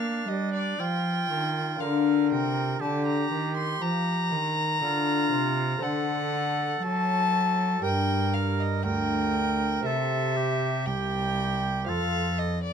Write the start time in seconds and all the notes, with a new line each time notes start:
Already playing: A#3 D4 F4 A#4 F5
0.28 G3 D#5
0.54 D5
0.79 F3 F4 G5
1.30 D#3
1.76 D4 F4 A#4
1.80 D3 A#4 F5
2.30 C3 G5
2.80 D3 G4 A5
3.06 A#5
3.31 D#3
3.57 C6
3.81 F3 A#5
4.31 D#3
4.81 D3 F4
5.31 C3
5.77 D4 A4 C5
5.82 D3 A4 F#5
6.82 F#3 A5
7.80 D4 G4 A#4
7.84 G2 G5
8.34 F5
8.60 D#5
8.84 D2 A#4 G5
9.81 C3 C4 G4 A#4
9.85 C3 A4 E5
10.36 G4
10.86 C2 G4 G5
11.84 F2 C4 F4 A4 F5
11.88 F2 A4
12.38 D#5
12.63 D5